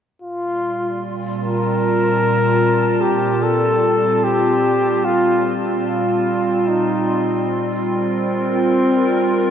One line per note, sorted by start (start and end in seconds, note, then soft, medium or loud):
0.19 6.69 A#2 medium
0.19 1.03 F4 medium
0.23 9.50 C6 soft
0.38 9.50 G3 medium
0.44 9.50 F4 medium
0.96 9.50 C4 medium
1.20 6.71 A5 medium
1.43 3.02 A#4 loud
3.01 3.44 G4 medium
3.43 4.25 A4 medium
4.24 5.06 G4 medium
5.05 5.60 F4 medium
5.85 6.69 F4 medium
6.68 7.50 D#4 medium
7.80 9.50 A#4 medium
7.95 9.50 C4 medium